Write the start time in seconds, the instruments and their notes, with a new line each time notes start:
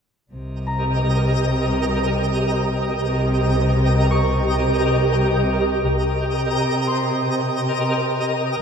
0.29 double bass section C2, cello section C3, synth texture G4 A#4 D#5
0.67 harp A#5
3.06 double bass section C2, cello section C3, synth texture G4 A#4 D#5
4.11 harp C#6
5.12 harp G5
5.82 double bass section C2, cello section C3, synth texture G4 A#4 D#5
6.87 harp C6